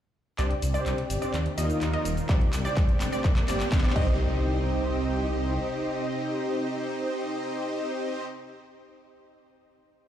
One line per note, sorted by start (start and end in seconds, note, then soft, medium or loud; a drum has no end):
0.38 0.54 C2 loud
0.38 1.33 C3 medium
0.38 0.52 C4 medium
0.38 1.33 C4 medium
0.38 0.52 D4 medium
0.38 1.33 D4 medium
0.38 1.33 G4 medium
0.38 0.52 G4 medium
0.38 0.52 C5 medium
0.38 0.52 D5 medium
0.38 clap soft
0.38 closed hi-hat medium
0.38 riser medium
0.38 shaker soft
0.51 closed hi-hat soft
0.62 0.77 C2 medium
0.62 open hi-hat loud
0.62 shaker medium
0.74 0.95 C4 medium
0.74 0.95 D4 medium
0.74 0.95 G4 medium
0.74 0.95 C5 medium
0.74 0.95 D5 medium
0.74 0.95 D5 loud
0.74 closed hi-hat soft
0.74 shaker soft
0.86 0.94 C2 medium
0.86 clap medium
0.86 closed hi-hat medium
0.86 shaker soft
0.98 closed hi-hat soft
1.10 1.17 G1 medium
1.10 open hi-hat loud
1.10 shaker medium
1.22 1.32 C4 medium
1.22 1.32 D4 medium
1.22 1.32 G4 medium
1.22 1.32 C5 medium
1.22 1.32 D5 medium
1.22 closed hi-hat soft
1.22 shaker soft
1.34 1.49 D#2 medium
1.34 2.28 D#3 medium
1.34 2.28 D#4 medium
1.34 2.28 F4 medium
1.34 2.28 A#4 medium
1.34 clap medium
1.34 closed hi-hat medium
1.34 shaker soft
1.46 closed hi-hat soft
1.57 1.73 D#2 medium
1.57 1.90 A#3 medium
1.57 1.90 D#4 medium
1.57 1.90 F4 medium
1.57 1.90 A#4 medium
1.57 1.90 D#5 medium
1.57 open hi-hat loud
1.57 shaker medium
1.70 closed hi-hat soft
1.70 shaker soft
1.81 1.96 D#2 medium
1.81 clap medium
1.81 closed hi-hat medium
1.81 shaker soft
1.93 2.07 A#3 medium
1.93 2.07 D#4 medium
1.93 2.07 F4 medium
1.93 2.07 A#4 medium
1.93 2.07 D#5 medium
1.93 closed hi-hat soft
2.05 2.20 D#1 medium
2.05 open hi-hat loud
2.05 shaker medium
2.17 closed hi-hat soft
2.17 shaker soft
2.29 2.44 C2 loud
2.29 3.23 C3 medium
2.29 3.94 C4 medium
2.29 2.42 C4 medium
2.29 3.94 D4 medium
2.29 2.42 D4 medium
2.29 3.23 G4 medium
2.29 2.42 G4 medium
2.29 2.42 C5 medium
2.29 2.42 D5 medium
2.29 kick loud
2.29 clap medium
2.29 closed hi-hat medium
2.29 shaker soft
2.41 closed hi-hat soft
2.53 2.68 C2 medium
2.53 clap medium
2.53 open hi-hat loud
2.53 shaker medium
2.65 2.86 C4 medium
2.65 2.86 D4 medium
2.65 2.86 G4 medium
2.65 2.86 C5 medium
2.65 2.86 D5 loud
2.65 closed hi-hat soft
2.65 shaker soft
2.77 2.84 C2 loud
2.77 kick loud
2.77 clap medium
2.77 closed hi-hat medium
2.77 shaker soft
2.89 closed hi-hat soft
3.01 3.08 G1 medium
3.01 clap medium
3.01 open hi-hat loud
3.01 shaker medium
3.12 3.23 C4 medium
3.12 3.23 D4 medium
3.12 3.23 G4 medium
3.12 3.23 C5 medium
3.12 3.23 D5 medium
3.12 closed hi-hat soft
3.12 shaker soft
3.24 3.39 G1 medium
3.24 3.95 G4 medium
3.24 kick loud
3.24 clap medium
3.24 closed hi-hat medium
3.24 shaker soft
3.36 clap medium
3.36 closed hi-hat soft
3.48 3.63 G1 medium
3.48 3.81 C4 medium
3.48 3.81 D4 medium
3.48 3.81 G4 medium
3.48 3.81 C5 medium
3.48 3.81 D5 medium
3.48 clap loud
3.48 open hi-hat loud
3.48 shaker medium
3.60 clap medium
3.60 closed hi-hat soft
3.60 shaker soft
3.72 3.87 G1 medium
3.72 kick loud
3.72 clap loud
3.72 closed hi-hat medium
3.72 shaker soft
3.78 clap medium
3.84 3.95 C4 medium
3.84 3.96 D4 medium
3.84 3.95 G4 medium
3.84 3.95 C5 medium
3.84 3.96 D5 medium
3.84 clap medium
3.84 closed hi-hat soft
3.90 clap medium
3.96 5.58 C2 loud
3.96 8.24 C3 medium
3.96 8.24 C4 medium
3.96 8.24 D#4 medium
3.96 8.24 G4 medium
3.96 8.24 G4 loud
3.96 8.24 C5 medium
3.96 8.24 D#5 loud
3.96 8.24 D#5 medium
3.96 kick loud
3.96 crash medium
3.96 impact medium